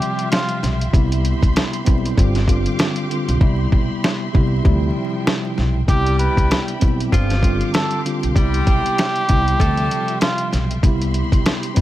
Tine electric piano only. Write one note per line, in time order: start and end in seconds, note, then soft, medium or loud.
0.00 0.84 C3 loud
0.00 0.85 F3 medium
0.00 0.85 G3 medium
0.00 0.85 E5 loud
0.92 1.79 C3 loud
0.92 1.80 G3 medium
0.92 1.80 B3 medium
0.92 1.80 E4 loud
1.84 2.16 G3 medium
1.84 2.17 B3 medium
1.84 2.16 C4 medium
1.84 2.18 E4 loud
2.16 2.38 D3 medium
2.16 2.39 G3 medium
2.16 2.39 C4 medium
2.16 2.39 F4 loud
2.47 3.05 D3 loud
2.47 3.05 G3 medium
2.47 3.06 C4 medium
2.47 3.06 F4 loud
3.09 3.39 D3 medium
3.09 3.39 G3 medium
3.09 3.39 C4 medium
3.09 3.40 F4 medium
3.39 4.26 C3 medium
3.39 4.27 G3 medium
3.39 4.27 B3 medium
3.39 4.28 E4 loud
4.33 4.62 C3 loud
4.33 4.64 G3 medium
4.33 4.65 B3 medium
4.33 4.65 E4 loud
4.63 5.79 C3 medium
4.63 5.80 F3 medium
4.63 5.80 G3 medium
4.63 5.80 E4 loud
5.87 6.74 C3 loud
5.87 6.75 G3 medium
5.87 6.75 B3 medium
5.87 6.75 E4 loud
6.79 7.11 G3 medium
6.79 7.12 B3 medium
6.79 7.11 C4 loud
6.79 7.13 E4 loud
7.11 7.33 D3 medium
7.11 7.33 G3 medium
7.11 7.34 C4 medium
7.11 7.34 F4 loud
7.42 8.00 D3 loud
7.42 8.00 G3 medium
7.42 8.01 C4 medium
7.42 8.01 F4 loud
8.04 8.33 D3 medium
8.04 8.34 G3 medium
8.04 8.34 C4 medium
8.04 8.35 F4 medium
8.34 9.21 C3 loud
8.34 9.22 G3 medium
8.34 9.22 B3 medium
8.34 9.23 E4 loud
9.27 9.57 C3 loud
9.27 9.58 G3 medium
9.27 9.60 B3 medium
9.27 9.60 E4 loud
9.58 10.74 C3 medium
9.58 10.74 F3 medium
9.58 10.75 G3 medium
9.58 10.75 E5 loud
10.82 11.69 C3 medium
10.82 11.69 G3 medium
10.82 11.70 B3 medium
10.82 11.70 E4 loud
11.74 11.81 G3 medium
11.74 11.81 B3 medium
11.74 11.81 C4 loud
11.74 11.81 E4 loud